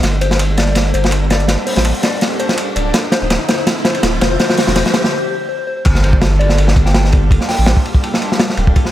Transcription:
Already playing: riser
0.03 sub bass G1, analog synth pad G3 A#3 D4 F4 A4, snare, closed hi-hat, ride
0.21 soft synth lead C5, closed hi-hat, ride
0.31 soft synth lead C5, snare
0.39 snare, closed hi-hat, ride
0.57 soft synth lead D5, snare, closed hi-hat, ride
0.67 analog synth pad G3 A#3 D4 F4 A4, snare
0.75 snare, closed hi-hat, ride
0.86 snare
0.94 sub bass G1, soft synth lead C5, closed hi-hat, ride
1.04 soft synth lead C5, snare
1.11 snare, closed hi-hat, ride
1.30 soft synth lead D5, snare, closed hi-hat, ride
1.40 closed hi-hat
1.48 analog synth pad G3 A#3 D4 F4 A4, snare, closed hi-hat, ride
1.67 soft synth lead C5, closed hi-hat, open hi-hat
1.76 sub bass A1, soft synth lead C5, snare, ride
1.85 snare, closed hi-hat, ride
1.95 closed hi-hat
2.03 soft synth lead D5, snare, closed hi-hat, ride
2.13 analog synth pad G3 A#3 D4 F4 A4
2.21 snare, closed hi-hat, ride
2.40 soft synth lead C5, closed hi-hat, ride
2.49 soft synth lead C5, snare
2.58 snare, closed hi-hat, ride
2.75 sub bass D1, analog synth pad G3 A#3 D4 F4 A4, soft synth lead D5, closed hi-hat, ride
2.94 analog synth pad D3 F3 A3 C4 E4, snare, closed hi-hat, ride
3.12 soft synth lead C5, snare, closed hi-hat, ride
3.22 sub bass D1, soft synth lead C5, snare
3.30 snare, closed hi-hat, ride
3.48 soft synth lead C5, snare, closed hi-hat, ride
3.58 analog synth pad D3 F3 A3 C4 E4, soft synth lead C5, snare
3.67 snare, closed hi-hat, ride
3.77 snare
3.85 soft synth lead C5, snare, closed hi-hat, ride
3.90 ride
3.95 soft synth lead C5, snare, ride
4.03 sub bass D1, snare, closed hi-hat, ride
4.21 sub bass E1, soft synth lead C5, snare, closed hi-hat, ride
4.31 soft synth lead C5
4.39 analog synth pad D3 F3 A3 C4 E4, soft synth lead C5, snare, closed hi-hat, ride
4.49 soft synth lead C5, snare
4.57 soft synth lead C5, snare, closed hi-hat, open hi-hat
4.67 sub bass E1, soft synth lead C5, snare, ride
4.76 soft synth lead C5, snare, closed hi-hat, ride
4.86 soft synth lead C5, snare, closed hi-hat
4.94 soft synth lead C5, snare, closed hi-hat, ride
5.04 analog synth pad D3 F3 A3 C4 E4, soft synth lead C5, snare
5.12 soft synth lead C5
5.22 soft synth lead C5
5.31 soft synth lead C5
5.40 soft synth lead C5
5.49 soft synth lead C5
5.59 soft synth lead C5
5.67 soft synth lead C5
5.77 soft synth lead C5
5.85 sub bass G1, analog synth pad G3 A#3 D4 F4 A4, kick, crash, ride, impact
5.95 snare
6.04 soft synth lead C5, ride
6.13 soft synth lead C5, kick
6.21 snare, ride
6.39 soft synth lead D5, ride
6.49 analog synth pad G3 A#3 D4 F4 A4, snare
6.58 ride
6.68 snare
6.76 sub bass G1, kick, ride
6.86 soft synth lead G5, snare
6.94 soft synth lead G5, snare, ride
7.04 snare
7.12 kick, ride
7.31 analog synth pad G3 A#3 D4 F4 A4, kick, ride
7.41 snare
7.49 soft synth lead G5, snare, open hi-hat
7.58 sub bass A1, ride
7.66 snare, ride
7.77 kick
7.85 ride
7.95 analog synth pad G3 A#3 D4 F4 A4, kick
8.04 ride
8.14 snare
8.22 ride
8.32 snare
8.40 snare, ride
8.50 snare
8.57 sub bass D1, analog synth pad G3 A#3 D4 F4 A4, ride
8.67 kick
8.76 analog synth pad D3 F3 A3 C4 E4, kick, ride
8.85 snare

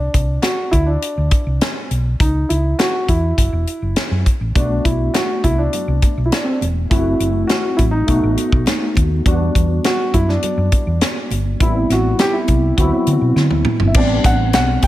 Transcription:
Already playing: grand piano D4
0.14 fingered electric bass C2, kick, closed hi-hat
0.42 grand piano F#4, snare, closed hi-hat
0.71 fingered electric bass D2, grand piano E4, kick, closed hi-hat
0.86 grand piano D4
1.02 closed hi-hat
1.17 fingered electric bass D2
1.31 kick, closed hi-hat
1.46 fingered electric bass C2
1.61 snare, closed hi-hat
1.91 fingered electric bass B1, closed hi-hat
2.20 fingered electric bass C#2, grand piano D#4, kick, closed hi-hat
2.49 fingered electric bass C#2, grand piano E4, closed hi-hat
2.79 grand piano F#4, snare, closed hi-hat
3.08 fingered electric bass E2, grand piano E4, kick, closed hi-hat
3.38 fingered electric bass F#1, kick, closed hi-hat
3.52 fingered electric bass E1
3.67 closed hi-hat
3.82 fingered electric bass F#1
3.96 snare, closed hi-hat
4.11 fingered electric bass F#2
4.26 kick, closed hi-hat
4.41 fingered electric bass A1
4.55 fingered electric bass B1, tine electric piano A3 B3 D4 F#4, grand piano D4, kick, closed hi-hat, muted conga
4.85 fingered electric bass B1, grand piano E4, kick, closed hi-hat
5.14 grand piano F#4, snare, closed hi-hat, high conga
5.44 fingered electric bass C2, grand piano E4, kick, closed hi-hat, muted conga
5.58 grand piano D4
5.73 closed hi-hat, muted conga, low conga
5.88 fingered electric bass C2
6.02 kick, closed hi-hat, muted conga
6.17 fingered electric bass B1
6.26 grand piano E4
6.32 grand piano D4, snare, closed hi-hat, high conga
6.44 grand piano C4
6.53 grand piano D4
6.61 fingered electric bass E1, closed hi-hat, high conga
6.90 fingered electric bass F#1, tine electric piano A3 C4 E4 F#4, grand piano E4, kick, closed hi-hat, muted conga
7.20 fingered electric bass F#1, closed hi-hat
7.47 grand piano F#4, snare, closed hi-hat, high conga
7.77 fingered electric bass A1, grand piano E4, kick, closed hi-hat, muted conga, low conga
7.91 grand piano D#4
8.07 fingered electric bass B1, tine electric piano A3 B3 D#4 F#4, kick, closed hi-hat, muted conga
8.23 fingered electric bass A1
8.37 closed hi-hat, muted conga
8.52 fingered electric bass B1, kick
8.66 snare, closed hi-hat, high conga
8.95 fingered electric bass D#2, kick, closed hi-hat, high conga
9.25 fingered electric bass E2, tine electric piano G3 B3 D4 F#4, grand piano D4, kick, closed hi-hat, muted conga
9.55 fingered electric bass E2, kick, closed hi-hat
9.84 grand piano F#4, snare, closed hi-hat, high conga
10.14 fingered electric bass F#2, grand piano E4, kick, closed hi-hat, muted conga
10.29 grand piano D4, snare
10.43 closed hi-hat, muted conga, low conga
10.57 fingered electric bass F#2
10.72 kick, closed hi-hat, muted conga
10.87 fingered electric bass E2
11.01 snare, closed hi-hat, high conga
11.31 fingered electric bass G1, closed hi-hat, high conga
11.60 fingered electric bass A1, tine electric piano G3 B3 C4 E4, grand piano E4, kick, closed hi-hat, muted conga
11.90 fingered electric bass A1, grand piano F#4, snare, closed hi-hat
12.19 grand piano G4, snare, closed hi-hat, high conga
12.33 grand piano E4
12.48 fingered electric bass C2, kick, closed hi-hat, muted conga, low conga
12.77 fingered electric bass D2, tine electric piano F3 B3 C4 E4, grand piano F#4, kick, closed hi-hat
12.84 tine electric piano F#3
13.07 fingered electric bass D3, closed hi-hat, muted conga
13.21 fingered electric bass B2
13.36 fingered electric bass D3, snare, high conga
13.51 fingered electric bass D2, high tom
13.65 mid tom, high conga
13.80 fingered electric bass G1, floor tom
13.87 grand piano E5
13.94 fingered electric bass A1, tine electric piano G3 B3 C4 D4, grand piano D5, kick, crash, muted conga
14.24 fingered electric bass A1, grand piano F#5, kick, snare, closed hi-hat
14.53 fingered electric bass B1, grand piano F#5, snare, closed hi-hat, high conga
14.82 grand piano G5, kick, closed hi-hat, muted conga

